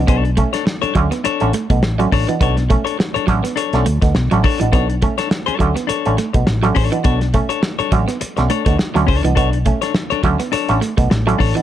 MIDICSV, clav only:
0, 0, Header, 1, 2, 480
1, 0, Start_track
1, 0, Key_signature, 2, "minor"
1, 0, Tempo, 579710
1, 73, Time_signature, 4, 2, 24, 8
1, 9622, End_track
2, 0, Start_track
2, 0, Title_t, "Clav"
2, 0, Program_c, 0, 7
2, 74, Note_on_c, 0, 47, 58
2, 191, Note_off_c, 0, 47, 0
2, 309, Note_on_c, 0, 57, 77
2, 314, Note_on_c, 0, 61, 88
2, 429, Note_off_c, 0, 57, 0
2, 431, Note_off_c, 0, 61, 0
2, 790, Note_on_c, 0, 50, 97
2, 793, Note_on_c, 0, 57, 86
2, 794, Note_on_c, 0, 61, 110
2, 909, Note_off_c, 0, 50, 0
2, 911, Note_off_c, 0, 57, 0
2, 912, Note_off_c, 0, 61, 0
2, 1166, Note_on_c, 0, 50, 78
2, 1166, Note_on_c, 0, 57, 69
2, 1168, Note_on_c, 0, 61, 87
2, 1260, Note_off_c, 0, 50, 0
2, 1260, Note_off_c, 0, 57, 0
2, 1261, Note_off_c, 0, 61, 0
2, 1412, Note_on_c, 0, 47, 63
2, 1503, Note_off_c, 0, 47, 0
2, 1643, Note_on_c, 0, 50, 86
2, 1644, Note_on_c, 0, 57, 75
2, 1649, Note_on_c, 0, 61, 93
2, 1739, Note_off_c, 0, 50, 0
2, 1740, Note_off_c, 0, 57, 0
2, 1742, Note_off_c, 0, 61, 0
2, 1890, Note_on_c, 0, 47, 61
2, 1983, Note_off_c, 0, 47, 0
2, 1999, Note_on_c, 0, 47, 61
2, 2115, Note_off_c, 0, 47, 0
2, 2235, Note_on_c, 0, 57, 73
2, 2239, Note_on_c, 0, 61, 88
2, 2353, Note_off_c, 0, 57, 0
2, 2355, Note_off_c, 0, 61, 0
2, 2715, Note_on_c, 0, 50, 104
2, 2716, Note_on_c, 0, 57, 84
2, 2719, Note_on_c, 0, 61, 113
2, 2834, Note_off_c, 0, 50, 0
2, 2834, Note_off_c, 0, 57, 0
2, 2835, Note_off_c, 0, 61, 0
2, 3093, Note_on_c, 0, 50, 84
2, 3094, Note_on_c, 0, 57, 78
2, 3099, Note_on_c, 0, 61, 91
2, 3185, Note_off_c, 0, 50, 0
2, 3185, Note_off_c, 0, 57, 0
2, 3188, Note_off_c, 0, 61, 0
2, 3333, Note_on_c, 0, 47, 62
2, 3425, Note_off_c, 0, 47, 0
2, 3575, Note_on_c, 0, 50, 88
2, 3577, Note_on_c, 0, 57, 78
2, 3580, Note_on_c, 0, 61, 90
2, 3666, Note_off_c, 0, 50, 0
2, 3667, Note_off_c, 0, 57, 0
2, 3669, Note_off_c, 0, 61, 0
2, 3817, Note_on_c, 0, 47, 66
2, 3907, Note_off_c, 0, 47, 0
2, 3922, Note_on_c, 0, 47, 57
2, 4038, Note_off_c, 0, 47, 0
2, 4159, Note_on_c, 0, 57, 78
2, 4165, Note_on_c, 0, 61, 82
2, 4276, Note_off_c, 0, 57, 0
2, 4279, Note_off_c, 0, 61, 0
2, 4636, Note_on_c, 0, 50, 100
2, 4640, Note_on_c, 0, 57, 89
2, 4640, Note_on_c, 0, 61, 100
2, 4755, Note_off_c, 0, 50, 0
2, 4757, Note_off_c, 0, 57, 0
2, 4757, Note_off_c, 0, 61, 0
2, 5014, Note_on_c, 0, 50, 73
2, 5016, Note_on_c, 0, 57, 72
2, 5018, Note_on_c, 0, 61, 90
2, 5106, Note_off_c, 0, 50, 0
2, 5107, Note_off_c, 0, 57, 0
2, 5108, Note_off_c, 0, 61, 0
2, 5251, Note_on_c, 0, 47, 65
2, 5344, Note_off_c, 0, 47, 0
2, 5487, Note_on_c, 0, 50, 89
2, 5489, Note_on_c, 0, 57, 79
2, 5492, Note_on_c, 0, 61, 92
2, 5583, Note_off_c, 0, 50, 0
2, 5584, Note_off_c, 0, 57, 0
2, 5585, Note_off_c, 0, 61, 0
2, 5728, Note_on_c, 0, 47, 64
2, 5823, Note_off_c, 0, 47, 0
2, 5834, Note_on_c, 0, 47, 62
2, 5954, Note_off_c, 0, 47, 0
2, 6077, Note_on_c, 0, 57, 73
2, 6081, Note_on_c, 0, 61, 86
2, 6196, Note_off_c, 0, 57, 0
2, 6198, Note_off_c, 0, 61, 0
2, 6556, Note_on_c, 0, 50, 100
2, 6559, Note_on_c, 0, 57, 83
2, 6561, Note_on_c, 0, 61, 104
2, 6675, Note_off_c, 0, 50, 0
2, 6677, Note_off_c, 0, 57, 0
2, 6678, Note_off_c, 0, 61, 0
2, 6933, Note_on_c, 0, 50, 83
2, 6934, Note_on_c, 0, 57, 72
2, 6937, Note_on_c, 0, 61, 84
2, 7025, Note_off_c, 0, 50, 0
2, 7026, Note_off_c, 0, 57, 0
2, 7027, Note_off_c, 0, 61, 0
2, 7172, Note_on_c, 0, 47, 60
2, 7265, Note_off_c, 0, 47, 0
2, 7409, Note_on_c, 0, 50, 87
2, 7410, Note_on_c, 0, 57, 77
2, 7414, Note_on_c, 0, 61, 99
2, 7503, Note_off_c, 0, 50, 0
2, 7504, Note_off_c, 0, 57, 0
2, 7506, Note_off_c, 0, 61, 0
2, 7653, Note_on_c, 0, 47, 62
2, 7745, Note_off_c, 0, 47, 0
2, 7755, Note_on_c, 0, 47, 62
2, 7874, Note_off_c, 0, 47, 0
2, 7998, Note_on_c, 0, 57, 78
2, 8004, Note_on_c, 0, 61, 75
2, 8115, Note_off_c, 0, 57, 0
2, 8118, Note_off_c, 0, 61, 0
2, 8476, Note_on_c, 0, 50, 101
2, 8477, Note_on_c, 0, 57, 93
2, 8482, Note_on_c, 0, 61, 107
2, 8594, Note_off_c, 0, 50, 0
2, 8594, Note_off_c, 0, 57, 0
2, 8597, Note_off_c, 0, 61, 0
2, 8848, Note_on_c, 0, 50, 85
2, 8848, Note_on_c, 0, 57, 70
2, 8852, Note_on_c, 0, 61, 92
2, 8941, Note_off_c, 0, 50, 0
2, 8942, Note_off_c, 0, 57, 0
2, 8944, Note_off_c, 0, 61, 0
2, 9090, Note_on_c, 0, 47, 66
2, 9182, Note_off_c, 0, 47, 0
2, 9329, Note_on_c, 0, 50, 80
2, 9331, Note_on_c, 0, 57, 75
2, 9334, Note_on_c, 0, 61, 101
2, 9422, Note_off_c, 0, 50, 0
2, 9422, Note_off_c, 0, 57, 0
2, 9424, Note_off_c, 0, 61, 0
2, 9572, Note_on_c, 0, 47, 66
2, 9622, Note_off_c, 0, 47, 0
2, 9622, End_track
0, 0, End_of_file